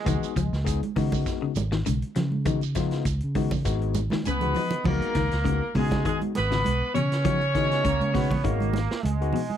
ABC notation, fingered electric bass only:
X:1
M:4/4
L:1/16
Q:"Swing 16ths" 1/4=100
K:Dbmix
V:1 name="Fingered electric bass" clef=bass
D,, z D,, D,,2 z D,2 z2 A,,,2 C,, z D,2- | D,4 D,, D,3 A,,,3 z D,,2 z2 | D,, z D,, D,,2 z D,2 z2 A,,,2 C,, z D,2- | D,4 D,, D,3 A,,,3 z D,,2 z2 |]